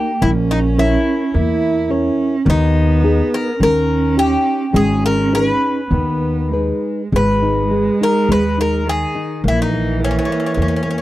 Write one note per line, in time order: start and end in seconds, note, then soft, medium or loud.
0.00 0.23 A#3 medium
0.00 0.10 D#4 soft
0.00 0.11 G4 soft
0.00 0.23 G4 medium
0.00 0.11 A#4 medium
0.21 0.95 A#1 loud
0.21 0.76 A#3 medium
0.21 1.36 C#4 loud
0.21 0.30 E4 medium
0.51 0.58 D#4 medium
0.78 1.23 E4 medium
0.78 2.15 E4 medium
0.78 1.23 A#4 soft
0.78 1.23 C#5 medium
1.34 2.07 E2 medium
1.34 1.88 A#3 medium
1.34 1.92 E4 loud
1.89 2.49 C#4 loud
1.89 2.35 E4 soft
1.89 2.36 A#4 soft
1.89 2.36 C#5 medium
2.45 3.20 D#2 loud
2.45 3.01 D#3 medium
2.45 3.59 B3 loud
2.50 3.29 D#4 medium
3.03 3.48 B3 soft
3.03 3.48 D#4 soft
3.03 3.49 G#4 medium
3.34 3.59 A#4 medium
3.59 4.34 D#2 medium
3.59 4.14 D#3 medium
3.59 4.70 C#4 loud
3.59 4.14 A#4 medium
4.16 4.62 C#4 soft
4.16 4.63 D#4 soft
4.16 4.63 G4 medium
4.16 4.71 G4 medium
4.73 5.50 G#1 medium
4.73 5.30 G#3 medium
4.73 5.86 C#4 medium
4.73 5.05 G#4 medium
5.06 5.34 A#4 medium
5.33 5.79 D#4 soft
5.33 5.80 G#4 soft
5.33 5.80 B4 soft
5.33 6.80 B4 medium
5.91 6.70 D#2 medium
5.91 6.50 D#3 medium
5.91 6.53 B3 medium
6.51 7.13 G#3 medium
6.51 7.01 D#4 soft
6.51 7.01 G#4 soft
6.51 7.01 B4 soft
7.12 7.88 G#1 medium
7.12 7.70 G#3 medium
7.12 8.88 G#3 loud
7.12 7.98 B4 medium
7.42 7.71 D#4 soft
7.71 7.99 G#3 medium
8.01 8.29 D#4 soft
8.01 8.31 A#4 medium
8.29 9.03 D#2 medium
8.29 8.57 G#3 medium
8.29 8.60 B4 medium
8.58 8.85 D#4 soft
8.58 8.88 A#4 medium
8.86 9.46 D#3 medium
8.86 9.14 G#3 soft
8.86 9.41 G#4 medium
9.15 9.43 D#4 medium
9.44 10.17 A#1 medium
9.44 11.02 E3 loud
9.44 9.73 A#3 medium
9.48 9.61 E4 medium
9.62 9.99 D#4 medium
9.74 9.99 A#3 medium
10.00 10.27 A#3 medium
10.00 10.09 C#4 medium
10.11 10.16 C#4 soft
10.19 10.23 C#4 soft
10.25 10.55 A#3 soft
10.25 10.30 C#4 soft
10.32 10.37 C#4 soft
10.40 10.45 C#4 soft
10.46 10.52 C#4 soft
10.54 11.02 E2 medium
10.54 10.84 A#3 medium
10.54 10.60 C#4 soft
10.62 10.67 C#4 soft
10.68 10.74 C#4 soft
10.76 10.81 C#4 soft
10.83 11.02 A#3 soft
10.83 10.88 C#4 soft
10.91 10.96 C#4 soft
10.98 11.02 C#4 soft